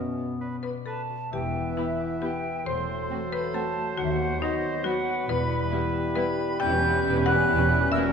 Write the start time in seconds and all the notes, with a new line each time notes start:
Already playing: B2 B3 F#4
0.18 B3
0.41 F#4 B4 D5
0.63 B4 D5 B5
0.86 A4 B4 A5
1.09 F#4
1.32 E1 E2 E3 B3 E4 G4 B4 E5 G5
1.55 B3
1.77 B3 E4 G4 B4 E5
1.99 G4
2.21 B3 E4 G4 G5
2.43 E4
2.65 E1 E2 E3 F#3 A3 F#4 A4 C5 C6
2.88 A3
3.09 A3 C4 F#4 C5
3.32 A4 B4 B5
3.53 A3 C4 F#4 A4 A5
3.75 A3
3.96 D#2 D#3 B3 F#4 F#5
4.04 E5
4.10 F#5
4.19 F#3
4.40 F#3 B3 D#4 F#4 B4 D#5
4.63 F#4
4.84 F#3 B3 F#4 B4 F#5
5.06 D#4
5.28 E1 E2 E3 G3 E4 G4 B4 B5
5.50 E4
5.72 G3 B3 E4 G4
5.93 E5
6.15 G3 B3 E4 B4 B5
6.38 E4
6.60 E1 E2 E3 G3 B3 C#4 E4 B4 G5 G6
6.71 G3 C#4
6.81 E3 B3 C#4 E4
6.92 G3 C#4
7.02 E1 E2 E3 B3 G4
7.07 E4
7.13 G3 C#4
7.25 E3 B3 E4 C#5 F#5 F#6
7.36 G3 C#4
7.47 E1 E2 E3 B3 E4 B4
7.58 G3 C#4
7.69 E3 B3 C#4 E4
7.81 G3 C#4
7.91 E1 E2 E3 A#3 E4 F#4 A#4 E5 E6
8.03 F#3 C#4